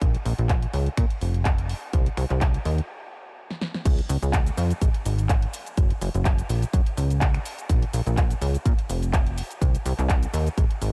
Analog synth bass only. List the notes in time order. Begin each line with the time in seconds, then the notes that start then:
0.01 A#1
0.25 A#1
0.38 A#1
0.73 C#2
0.97 A#2
1.21 F1
1.93 C2
2.17 C2
2.30 C2
2.65 D#2
3.85 C#2
4.09 C#2
4.22 C#2
4.57 F2
4.81 G#1
5.05 G#1
5.77 F#1
6.01 F#1
6.15 F#1
6.49 A#1
6.73 F#2
6.97 C#2
7.69 A#1
7.93 A#1
8.06 A#1
8.41 C#2
8.65 A#2
8.89 F1
9.61 C2
9.86 C2
9.99 C2
10.33 D#2
10.57 G#1
10.82 G#1